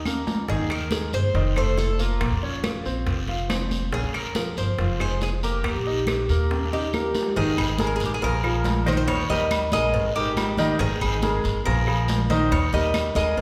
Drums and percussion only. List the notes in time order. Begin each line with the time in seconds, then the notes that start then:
0.05 high conga, high timbale, short guiro, claves
0.27 high conga, low timbale, short guiro
0.48 high bongo, long guiro
0.70 high bongo, high conga, high timbale, claves
0.91 high bongo, high conga, high timbale, short guiro
1.13 high conga, short guiro
1.34 high bongo, high conga, high timbale, long guiro
1.56 high bongo, high conga, high timbale, claves
1.78 high bongo, low bongo, high conga, short guiro
1.99 high bongo, short guiro
2.21 high bongo, high conga, high timbale, long guiro, claves
2.43 high bongo, high conga
2.64 high bongo, high conga, high timbale, short guiro, claves
2.85 high conga, short guiro
3.07 high bongo, high conga, high timbale, long guiro
3.28 high bongo, high conga, high timbale
3.50 high bongo, low bongo, high conga, high timbale, low timbale, short guiro, claves
3.71 high bongo, high conga, short guiro
3.92 high bongo, high conga, long guiro
4.14 high bongo, high conga, high timbale, claves
4.35 high bongo, high conga, high timbale, short guiro
4.57 high conga, short guiro
4.79 high bongo, high conga, high timbale, long guiro
5.00 high bongo, high conga, high timbale, claves
5.21 high bongo, low bongo, high conga, short guiro
5.43 high bongo, short guiro
5.64 high bongo, high conga, high timbale, long guiro, claves
5.86 high bongo, high conga
6.07 high bongo, high conga, high timbale, short guiro, claves
6.29 high conga, short guiro
6.50 high bongo, high conga, high timbale, long guiro
6.65 high timbale
6.72 high bongo, high conga
6.93 high bongo, low bongo, high conga, short guiro, claves
7.15 high bongo, high conga, short guiro
7.22 low timbale
7.36 cowbell, high conga, long guiro
7.57 high conga, low agogo, claves
7.79 cowbell, high conga, low timbale, low agogo, short guiro
8.00 cowbell, high conga, short guiro
8.22 cowbell, high conga, low agogo, long guiro
8.43 high conga, low agogo, claves
8.64 cowbell, high conga, low timbale, short guiro
8.86 cowbell, high conga, low agogo, short guiro
9.07 cowbell, high conga, low agogo, long guiro, claves
9.29 cowbell, high conga
9.51 cowbell, high conga, low timbale, low agogo, short guiro, claves
9.72 high conga, low agogo, short guiro
9.94 cowbell, high conga, long guiro
10.15 high conga, low agogo
10.37 cowbell, high conga, low timbale, low agogo, short guiro, claves
10.57 cowbell, high conga, short guiro
10.79 cowbell, high conga, long guiro
11.01 high conga, low agogo, claves
11.22 cowbell, high conga, low timbale, low agogo, short guiro
11.44 cowbell, high conga, short guiro
11.65 cowbell, high conga, low agogo, long guiro
11.87 high conga, low agogo, claves
12.08 cowbell, high conga, low timbale, short guiro
12.30 cowbell, high conga, low agogo, short guiro
12.51 cowbell, high conga, low agogo, long guiro, claves
12.73 cowbell, high conga
12.94 cowbell, high conga, low timbale, low agogo, short guiro, claves
13.15 high conga, low agogo, short guiro
13.36 cowbell, high conga, long guiro